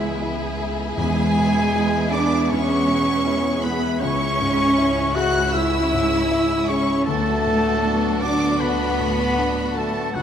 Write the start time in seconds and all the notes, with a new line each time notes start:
Already playing: C#2 C#3 E3 G#3 A3 B3 E4 F#4 G#4 C#5 E5
0.22 E4
0.47 E5
0.60 G#4
0.73 A4
0.97 E2 E3 G#3 B3 G#4 G#5
1.24 E4
1.36 B2
1.74 E4 E5
2.01 G#5
2.11 D4 G#4 D5 D6
2.25 E5
2.49 E2 G#3 C#4 C#5 C#6
2.76 E4
2.88 B2
3.01 G#4
3.26 E4 E5
3.51 G#5
3.62 B3 G#4 B4 B5
3.76 E5
4.00 C#2 C#3 C#4 E4 C#5 C#6
4.27 G#3
4.41 G#2
4.77 E4
5.02 E5
5.15 F#4 G#4 F#5 F#6
5.28 G#4
5.53 C#2 C#4 E4 E5 E6
5.79 G#3
5.93 G#2
6.06 G#4
6.31 E4
6.57 E5
6.68 C#4 G#4 C#5 C#6
6.81 G#4
7.05 D2 D3 F#3 A3 B3 D4 F#4 A4 A5
7.46 A2
7.58 F#4
7.84 D4 B4
8.09 D5
8.21 D4 F#4 D5 D6
8.34 B4
8.59 D2 A3 B3 B4 B5
8.85 B3
8.99 A2
9.12 F#4
9.38 D4 B4
9.63 D5
9.74 A3 F#4 A4 A5
9.88 B4
10.12 C#2 C#3 E3 F#3 G#3 F#4 F#5
10.16 E4 G#4